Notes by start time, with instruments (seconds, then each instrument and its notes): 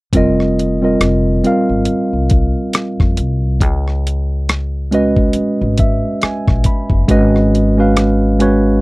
0.13 upright bass F1, tine electric piano G3 C4 F4 A#4, kick, closed hi-hat
0.17 tine electric piano D#5
0.40 cross-stick
0.59 closed hi-hat
0.82 tine electric piano G3 C4 F4 A#4 D#5
1.01 upright bass F1, cross-stick, closed hi-hat
1.44 tine electric piano G3 C4 F4 A#4 F5, closed hi-hat
1.69 upright bass G#1
1.85 muted upright bass stroke, closed hi-hat
2.13 upright bass C2
2.30 kick, closed hi-hat
2.73 cross-stick, closed hi-hat
3.00 upright bass F2, kick, cross-stick
3.17 upright bass C2, closed hi-hat
3.61 upright bass C#2, kick, closed hi-hat
3.88 cross-stick
4.07 closed hi-hat
4.49 cross-stick, closed hi-hat
4.91 tine electric piano G#3 C#4 F#4 B4 D#5, closed hi-hat
5.17 kick
5.33 muted upright bass stroke, closed hi-hat
5.62 upright bass G#1
5.78 tine electric piano E5, kick, closed hi-hat
6.22 tine electric piano G#5, muted upright bass stroke, cross-stick, closed hi-hat
6.48 upright bass A#1, kick, cross-stick
6.64 tine electric piano B5, kick, closed hi-hat
6.90 upright bass F#1, kick
7.08 upright bass G#1, tine electric piano G#3 C#4 F#4 B4 D#5, kick, closed hi-hat
7.36 cross-stick
7.55 closed hi-hat
7.77 tine electric piano G#3 C#4 F#4 B4 F5
7.97 cross-stick, closed hi-hat
8.39 tine electric piano G#3 C#4 F#4 B4 C#5, closed hi-hat